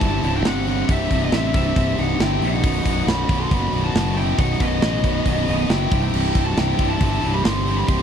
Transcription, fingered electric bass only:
0.01 G1
0.23 C1
0.45 G1
0.89 C1
1.11 C1
1.32 A1
1.54 C1
1.76 C1
1.98 C1
2.19 G1
2.41 A#1
2.64 B0
2.86 B0
3.07 B0
3.29 B0
3.51 F#1
3.73 B0
3.95 F#1
4.38 B0
4.60 B0
4.83 A1
5.04 B0
5.26 B0
5.48 B0
5.70 F#1
5.91 C1
6.13 C1
6.35 C1
6.58 C1
6.79 C1
7.00 G1
7.24 C1
7.45 G1
7.88 C1

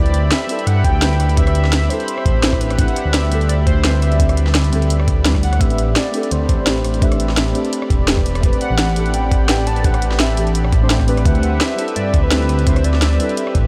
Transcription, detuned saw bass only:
Already playing: D2
0.67 G2
0.84 D2
1.20 D2
2.26 A1
3.06 D2
3.31 D2
4.72 D2
5.61 A1
6.31 D2
6.49 A1
6.84 A1
7.90 E1
8.70 A1
8.96 A1
10.37 A1
11.25 D2
11.96 G2
12.14 D2
12.49 D2
13.55 A1

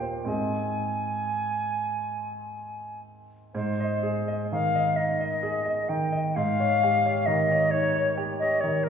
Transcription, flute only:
Already playing: G5
0.27 G#5
3.54 C5
4.51 F5
4.96 D#5
5.88 G5
6.35 F5
7.26 D#5
7.70 C#5
8.39 D#5
8.60 C#5
8.84 A#4

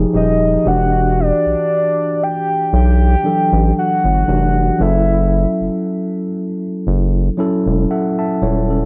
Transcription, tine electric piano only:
Already playing: F3 D#4 G4 G#4
0.13 F3 D#4 G4 G#4
0.64 E3 D4 F#4 G4
3.23 E3 F#3 D4 A4
4.27 E3 D4 F#4 G4
4.79 F#3 C#4 E4 A4
7.37 F#3 C#4 E4 A4
7.91 A4 E5 F#5
8.19 E5 A5
8.43 E4 C#5
8.70 C#4 A4

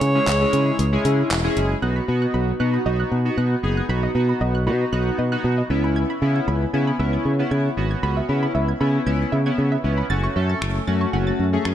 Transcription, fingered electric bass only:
0.01 C#3
0.27 C#2
0.53 C#3
0.79 C#2
1.05 C#3
1.31 E1
1.57 F#1
1.82 B1
2.08 B2
2.34 B1
2.60 B2
2.86 B1
3.12 B2
3.37 B2
3.63 F#1
3.89 B1
4.15 B2
4.41 B1
4.67 B2
4.93 B1
5.18 B2
5.44 B2
5.70 C#2
6.22 C#3
6.48 C#2
6.73 C#3
6.99 C#2
7.25 C#3
7.51 C#3
7.77 G#1
8.03 C#2
8.29 C#3
8.55 C#2
8.81 C#3
9.06 C#2
9.32 C#3
9.58 C#3
9.84 C#2
10.10 F#1
10.36 F#2
10.62 F#1
10.88 F#2
11.13 F#1
11.39 F#2
11.65 F#2

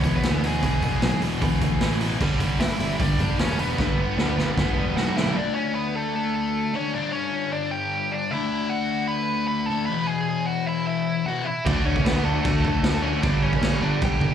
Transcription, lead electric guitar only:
Already playing: C#4 C#5
0.16 B3 B4
0.46 G#3 G#4
2.60 E4 E5
2.99 D4 D5
3.41 C#4 C#5
3.60 B3 B4
4.97 F#4 F#5
5.17 E4 E5
5.36 D4 D5
5.55 C#4 C#5
5.75 B3 B4
5.95 A3 A4
6.15 A3 A4
6.36 A3 A4
6.75 C#4 C#5
6.95 D4 D5
7.13 C#4 C#5
7.53 D4 D5
7.71 G4 G5
8.12 D4 D5
8.31 E4 E5
8.69 F#4 F#5
9.08 B4 B5
9.48 B4 B5
9.66 A4 A5
9.86 B4 B5
10.07 G#4 G#5
10.46 F#4 F#5
10.66 E4 E5
10.87 E4 E5
11.26 F#4 F#5
11.45 E4 E5
11.65 D4 D5
11.85 C#4 C#5
12.04 B3 B4
12.24 A3 A4
12.44 A3 A4
12.62 A3 A4
13.02 C#4 C#5
13.22 D4 D5
13.42 C#4 C#5
13.82 D4 D5
14.02 G4 G5

